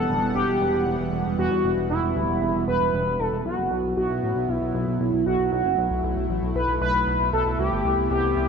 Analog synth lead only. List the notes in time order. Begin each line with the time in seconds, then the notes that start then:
Already playing: A4
0.35 G4
1.38 F#4
1.90 E4
2.68 B4
3.19 A4
3.45 F#4
3.97 F#4
4.49 E4
5.26 F#4
5.52 F#4
6.55 B4
6.81 B4
7.33 A4
7.59 G4
8.11 G4